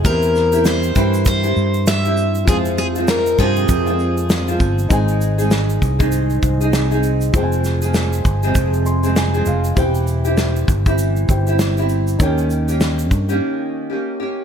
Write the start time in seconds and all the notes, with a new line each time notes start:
0.03 E2 E3 C4 E4 G4 A#4 C5, kick, shaker
0.22 shaker
0.35 snare, shaker
0.52 E4 G4, shaker
0.54 C4, shaker
0.65 C5, snare, shaker
0.83 shaker
0.95 G2 E3 C4 E4 G4, kick, shaker
1.14 shaker
1.25 C5, kick, shaker
1.43 C4 E4 G4, shaker
1.56 G2, shaker
1.74 shaker
1.86 E5, snare, shaker
2.05 C4 E4 G4, shaker
2.17 shaker
2.35 shaker
2.45 F2 F3 G#3 F4 G#4, kick, shaker
2.49 C4 F4 C5
2.65 shaker
2.78 G#4, shaker
2.95 F3 G#3 C4 F4, shaker
3.07 A#4, snare, shaker
3.26 shaker
3.38 F2 G2 C3 F3 C4 F4 G#4, kick, shaker
3.56 shaker
3.68 F2, kick, shaker
3.86 F3 G#3 C4 F4, shaker
3.99 shaker
4.17 shaker
4.29 snare, shaker
4.48 F3 G#3 C4 F4, shaker
4.60 G1, kick, shaker
4.79 shaker
4.89 G#1 G#3 C4 D#4 G#4 C5 G#5, kick, shaker
4.93 G#4
5.08 shaker
5.21 shaker
5.38 G#3 C4 D#4 G#4, shaker
5.51 snare, shaker
5.70 shaker
5.82 C2, kick, shaker
5.99 G#2 D#3 G#3 C4 D#4 G#4, kick, shaker
6.12 shaker
6.30 shaker
6.42 C2, kick, shaker
6.61 G#3 C4 D#4 G#4, shaker
6.73 snare, shaker
6.91 G#3 C4 D#4 G#4, shaker
7.03 shaker
7.21 shaker
7.33 F1 F3 G#3 C4 F4 G#4 C5, kick, shaker
7.37 G5
7.43 G#5
7.52 shaker
7.64 snare, shaker
7.82 F3 G#3 C4 G#4, shaker
7.94 snare, shaker
8.13 shaker
8.25 G1, kick, shaker
8.43 F2 C3 F3 G#3 C4 G#4, shaker
8.55 F1, kick, shaker
8.74 shaker
8.86 C6, shaker
9.03 F3 G#3 C4 G#4, shaker
9.16 G#5, snare, shaker
9.34 F3 G#3 C4 G#4, shaker
9.46 F1 F5, shaker
9.64 shaker
9.75 E1 E3 C4 E4 G4 C5 G5, kick, shaker
9.79 G4
9.95 shaker
10.07 shaker
10.25 C4 E4 G4, shaker
10.37 snare, shaker
10.56 shaker
10.68 G1, kick, shaker
10.86 E3 C4 E4 G4, kick, shaker
10.98 shaker
11.16 shaker
11.28 G1 E4 G4 C5 G5, kick, shaker
11.47 C4 E4 G4, shaker
11.59 snare, shaker
11.77 C4 E4 G4, shaker
11.89 shaker
12.07 shaker
12.18 D#2 D#3 A#3 C#4 D#4 A#4 C#5, kick, shaker
12.22 G4 G5
12.38 shaker
12.50 shaker
12.68 A#3 C#4 G4, shaker
12.80 snare, shaker
12.99 shaker
13.11 G2, kick, shaker
13.29 D#3 A#3 C#4 G4, shaker
13.90 A#3 C#4 G4
14.20 A#3 C#4 G4